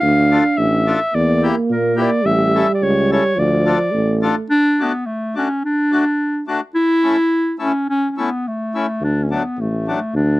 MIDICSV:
0, 0, Header, 1, 5, 480
1, 0, Start_track
1, 0, Key_signature, -1, "minor"
1, 0, Tempo, 561798
1, 20, Time_signature, 2, 2, 24, 8
1, 3851, Key_signature, 2, "major"
1, 8885, End_track
2, 0, Start_track
2, 0, Title_t, "Accordion"
2, 0, Program_c, 0, 21
2, 266, Note_on_c, 0, 62, 63
2, 269, Note_on_c, 0, 65, 53
2, 272, Note_on_c, 0, 69, 72
2, 372, Note_off_c, 0, 62, 0
2, 373, Note_off_c, 0, 65, 0
2, 375, Note_off_c, 0, 69, 0
2, 741, Note_on_c, 0, 62, 53
2, 744, Note_on_c, 0, 69, 62
2, 746, Note_on_c, 0, 65, 48
2, 849, Note_off_c, 0, 62, 0
2, 851, Note_off_c, 0, 69, 0
2, 852, Note_off_c, 0, 65, 0
2, 1222, Note_on_c, 0, 67, 70
2, 1223, Note_on_c, 0, 64, 65
2, 1226, Note_on_c, 0, 58, 67
2, 1328, Note_off_c, 0, 67, 0
2, 1329, Note_off_c, 0, 64, 0
2, 1330, Note_off_c, 0, 58, 0
2, 1678, Note_on_c, 0, 58, 60
2, 1681, Note_on_c, 0, 67, 68
2, 1686, Note_on_c, 0, 64, 44
2, 1793, Note_off_c, 0, 58, 0
2, 1795, Note_off_c, 0, 67, 0
2, 1798, Note_off_c, 0, 64, 0
2, 2179, Note_on_c, 0, 64, 55
2, 2183, Note_on_c, 0, 61, 63
2, 2183, Note_on_c, 0, 69, 70
2, 2283, Note_off_c, 0, 64, 0
2, 2285, Note_off_c, 0, 61, 0
2, 2285, Note_off_c, 0, 69, 0
2, 2661, Note_on_c, 0, 64, 45
2, 2662, Note_on_c, 0, 69, 51
2, 2665, Note_on_c, 0, 61, 55
2, 2763, Note_off_c, 0, 64, 0
2, 2763, Note_off_c, 0, 69, 0
2, 2765, Note_off_c, 0, 61, 0
2, 3119, Note_on_c, 0, 62, 70
2, 3126, Note_on_c, 0, 69, 62
2, 3131, Note_on_c, 0, 65, 53
2, 3232, Note_off_c, 0, 62, 0
2, 3236, Note_off_c, 0, 69, 0
2, 3238, Note_off_c, 0, 65, 0
2, 3608, Note_on_c, 0, 69, 75
2, 3609, Note_on_c, 0, 62, 59
2, 3610, Note_on_c, 0, 65, 53
2, 3718, Note_off_c, 0, 69, 0
2, 3719, Note_off_c, 0, 62, 0
2, 3719, Note_off_c, 0, 65, 0
2, 4095, Note_on_c, 0, 57, 54
2, 4102, Note_on_c, 0, 62, 57
2, 4105, Note_on_c, 0, 66, 67
2, 4203, Note_off_c, 0, 57, 0
2, 4207, Note_off_c, 0, 62, 0
2, 4208, Note_off_c, 0, 66, 0
2, 4572, Note_on_c, 0, 57, 56
2, 4574, Note_on_c, 0, 62, 47
2, 4580, Note_on_c, 0, 66, 52
2, 4681, Note_off_c, 0, 57, 0
2, 4682, Note_off_c, 0, 62, 0
2, 4685, Note_off_c, 0, 66, 0
2, 5054, Note_on_c, 0, 57, 55
2, 5059, Note_on_c, 0, 62, 51
2, 5060, Note_on_c, 0, 66, 62
2, 5162, Note_off_c, 0, 57, 0
2, 5164, Note_off_c, 0, 62, 0
2, 5165, Note_off_c, 0, 66, 0
2, 5532, Note_on_c, 0, 57, 66
2, 5533, Note_on_c, 0, 62, 58
2, 5540, Note_on_c, 0, 66, 58
2, 5640, Note_off_c, 0, 57, 0
2, 5641, Note_off_c, 0, 62, 0
2, 5644, Note_off_c, 0, 66, 0
2, 6009, Note_on_c, 0, 64, 76
2, 6010, Note_on_c, 0, 61, 47
2, 6020, Note_on_c, 0, 57, 54
2, 6119, Note_off_c, 0, 61, 0
2, 6119, Note_off_c, 0, 64, 0
2, 6124, Note_off_c, 0, 57, 0
2, 6484, Note_on_c, 0, 64, 64
2, 6486, Note_on_c, 0, 57, 47
2, 6491, Note_on_c, 0, 61, 44
2, 6597, Note_off_c, 0, 57, 0
2, 6597, Note_off_c, 0, 64, 0
2, 6600, Note_off_c, 0, 61, 0
2, 6985, Note_on_c, 0, 57, 52
2, 6985, Note_on_c, 0, 64, 71
2, 6986, Note_on_c, 0, 61, 55
2, 7088, Note_off_c, 0, 57, 0
2, 7088, Note_off_c, 0, 61, 0
2, 7088, Note_off_c, 0, 64, 0
2, 7474, Note_on_c, 0, 64, 60
2, 7476, Note_on_c, 0, 57, 60
2, 7476, Note_on_c, 0, 61, 49
2, 7573, Note_off_c, 0, 64, 0
2, 7574, Note_off_c, 0, 57, 0
2, 7575, Note_off_c, 0, 61, 0
2, 7953, Note_on_c, 0, 54, 57
2, 7954, Note_on_c, 0, 62, 54
2, 7958, Note_on_c, 0, 57, 45
2, 8055, Note_off_c, 0, 54, 0
2, 8055, Note_off_c, 0, 62, 0
2, 8057, Note_off_c, 0, 57, 0
2, 8437, Note_on_c, 0, 57, 54
2, 8441, Note_on_c, 0, 54, 57
2, 8443, Note_on_c, 0, 62, 55
2, 8537, Note_off_c, 0, 57, 0
2, 8539, Note_off_c, 0, 54, 0
2, 8540, Note_off_c, 0, 62, 0
2, 8885, End_track
3, 0, Start_track
3, 0, Title_t, "Clarinet"
3, 0, Program_c, 1, 71
3, 1, Note_on_c, 1, 77, 100
3, 486, Note_on_c, 1, 76, 87
3, 499, Note_off_c, 1, 77, 0
3, 981, Note_on_c, 1, 74, 89
3, 994, Note_off_c, 1, 76, 0
3, 1235, Note_off_c, 1, 74, 0
3, 1463, Note_on_c, 1, 70, 69
3, 1728, Note_on_c, 1, 74, 90
3, 1741, Note_off_c, 1, 70, 0
3, 1931, Note_on_c, 1, 76, 109
3, 1944, Note_off_c, 1, 74, 0
3, 2341, Note_off_c, 1, 76, 0
3, 2346, Note_on_c, 1, 74, 70
3, 2417, Note_on_c, 1, 73, 89
3, 2429, Note_off_c, 1, 74, 0
3, 2668, Note_off_c, 1, 73, 0
3, 2673, Note_on_c, 1, 73, 90
3, 2897, Note_on_c, 1, 74, 91
3, 2910, Note_off_c, 1, 73, 0
3, 3631, Note_off_c, 1, 74, 0
3, 3845, Note_on_c, 1, 62, 113
3, 4128, Note_on_c, 1, 59, 84
3, 4141, Note_off_c, 1, 62, 0
3, 4324, Note_on_c, 1, 57, 70
3, 4337, Note_off_c, 1, 59, 0
3, 4585, Note_off_c, 1, 57, 0
3, 4595, Note_on_c, 1, 61, 75
3, 4800, Note_off_c, 1, 61, 0
3, 4824, Note_on_c, 1, 62, 90
3, 5519, Note_off_c, 1, 62, 0
3, 5765, Note_on_c, 1, 64, 106
3, 6470, Note_off_c, 1, 64, 0
3, 6527, Note_on_c, 1, 61, 77
3, 6726, Note_off_c, 1, 61, 0
3, 6745, Note_on_c, 1, 61, 93
3, 6925, Note_off_c, 1, 61, 0
3, 6925, Note_on_c, 1, 61, 50
3, 7007, Note_on_c, 1, 59, 68
3, 7020, Note_off_c, 1, 61, 0
3, 7241, Note_on_c, 1, 57, 73
3, 7253, Note_off_c, 1, 59, 0
3, 7724, Note_on_c, 1, 62, 90
3, 7737, Note_off_c, 1, 57, 0
3, 7886, Note_on_c, 1, 61, 44
3, 7899, Note_off_c, 1, 62, 0
3, 7974, Note_on_c, 1, 59, 70
3, 7987, Note_off_c, 1, 61, 0
3, 8209, Note_on_c, 1, 57, 70
3, 8221, Note_off_c, 1, 59, 0
3, 8677, Note_on_c, 1, 62, 85
3, 8689, Note_off_c, 1, 57, 0
3, 8885, Note_off_c, 1, 62, 0
3, 8885, End_track
4, 0, Start_track
4, 0, Title_t, "Euphonium"
4, 0, Program_c, 2, 58
4, 25, Note_on_c, 2, 62, 71
4, 735, Note_off_c, 2, 62, 0
4, 966, Note_on_c, 2, 58, 88
4, 1913, Note_on_c, 2, 55, 94
4, 1926, Note_off_c, 2, 58, 0
4, 2865, Note_on_c, 2, 53, 86
4, 2878, Note_off_c, 2, 55, 0
4, 3345, Note_on_c, 2, 57, 67
4, 3358, Note_off_c, 2, 53, 0
4, 3840, Note_off_c, 2, 57, 0
4, 8885, End_track
5, 0, Start_track
5, 0, Title_t, "Tuba"
5, 0, Program_c, 3, 58
5, 23, Note_on_c, 3, 38, 97
5, 334, Note_off_c, 3, 38, 0
5, 495, Note_on_c, 3, 33, 90
5, 808, Note_off_c, 3, 33, 0
5, 979, Note_on_c, 3, 40, 95
5, 1289, Note_off_c, 3, 40, 0
5, 1449, Note_on_c, 3, 46, 74
5, 1760, Note_off_c, 3, 46, 0
5, 1923, Note_on_c, 3, 33, 97
5, 2236, Note_off_c, 3, 33, 0
5, 2408, Note_on_c, 3, 37, 86
5, 2719, Note_off_c, 3, 37, 0
5, 2884, Note_on_c, 3, 38, 90
5, 3197, Note_off_c, 3, 38, 0
5, 3362, Note_on_c, 3, 33, 77
5, 3678, Note_off_c, 3, 33, 0
5, 7697, Note_on_c, 3, 38, 75
5, 8011, Note_off_c, 3, 38, 0
5, 8184, Note_on_c, 3, 33, 68
5, 8495, Note_off_c, 3, 33, 0
5, 8667, Note_on_c, 3, 38, 91
5, 8885, Note_off_c, 3, 38, 0
5, 8885, End_track
0, 0, End_of_file